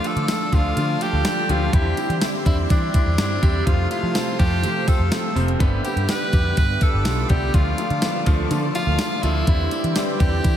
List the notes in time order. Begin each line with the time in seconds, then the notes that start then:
Already playing: D3 F3 A3 F4 A4 D5 F5 D6
0.04 D3 F3 A3 F4 A4, closed hi-hat, tambourine
0.16 D3, closed hi-hat
0.28 D3 F3 A3 F4, snare, closed hi-hat, tambourine
0.52 D2 D3 F3 A3 F4, kick, closed hi-hat, tambourine
0.76 D3 F3 A3 F4, closed hi-hat, tambourine
1.00 D3 F3 A3 F4 G4, closed hi-hat, tambourine
1.13 D2
1.24 D3 F3 A3 F4, snare, closed hi-hat, tambourine
1.48 D2 D3 F3 A3 F4 G4, closed hi-hat
1.73 E2 D3 G3 C4 E4 G4 C5 D5 E5 C6, kick, closed hi-hat
1.97 D3 G3 C4 E4, closed hi-hat, tambourine
2.09 E3, closed hi-hat
2.21 D3 G3 C4 E4, snare, closed hi-hat, tambourine
2.45 E2 D3 G3 C4 D4 E4, kick, closed hi-hat, tambourine
2.69 D3 E3 G3 C4 D4 E4, kick, closed hi-hat, tambourine
2.93 D3 G3 C4 E4, kick, closed hi-hat, tambourine
3.06 E2
3.18 G2 D3 G3 C4 E4, snare, closed hi-hat, tambourine
3.42 E2 D3 G3 C4 G4, kick, closed hi-hat, tambourine
3.66 F2 C3 F3 A3 F4 A4 C5 F5 C6, kick, closed hi-hat, tambourine
3.91 C3 F3 A3 E4 F4, closed hi-hat, tambourine
4.03 F3
4.15 C3 F3 A3 C4, snare, closed hi-hat, tambourine
4.39 F2 C3 F3 A3 F4 G4, kick, closed hi-hat, tambourine
4.63 C3 F3 A3 G4, closed hi-hat, tambourine
4.87 C3 F3 A3 F4 A4, kick, closed hi-hat, tambourine
4.99 F2
5.11 C3 F3 A3 F4, snare, closed hi-hat, tambourine
5.35 F1 C3 F3 A3 C4, open hi-hat
5.48 closed hi-hat
5.59 G1 D3 G3 B3 G4 B4 D5 E5 G5 D6, kick, closed hi-hat, tambourine
5.84 D3 G3 B3 G4, closed hi-hat, tambourine
5.96 G2, closed hi-hat
6.09 D3 G3 B3 G4 B4, snare, closed hi-hat, tambourine
6.32 F2 D3 G3 B3 G4, kick, closed hi-hat, tambourine
6.57 G2 D3 G3 B3 B4, kick, closed hi-hat, tambourine
6.81 D3 G3 B3 G4 A4, kick, closed hi-hat, tambourine
6.93 G1
7.05 B1 D3 G3 B3 F4, snare, closed hi-hat, tambourine
7.29 C2 D3 G3 B3 D4 G4, kick, closed hi-hat
7.54 D2 D3 F3 A3 F4 A4 D5 F5, kick, closed hi-hat, tambourine
7.77 D3 F3 A3 F4, closed hi-hat, tambourine
7.90 D3, closed hi-hat
8.02 D3 F3 A3 B3, snare, closed hi-hat, tambourine
8.26 D2 D3 F3 A3 F4, kick, closed hi-hat, tambourine
8.50 D3 F3 A3 F4, closed hi-hat, tambourine
8.74 D3 F3 A3 F4, closed hi-hat, tambourine
8.87 D2
8.99 D3 F3 A3 F4, snare, closed hi-hat, tambourine
9.22 D2 D3 F3 A3 E4 F4, closed hi-hat, tambourine
9.47 E2 D3 G3 C4 E4 G4 B4 D5 E5 G5, kick, closed hi-hat
9.71 D3 G3 C4 G4, closed hi-hat, tambourine
9.84 E3, closed hi-hat
9.95 D3 G3 C4 D4, snare, closed hi-hat, tambourine
10.19 E2 D3 G3 C4 D4 G4, kick, closed hi-hat, tambourine
10.43 D3 E3 G3 C4 E4, kick, closed hi-hat, tambourine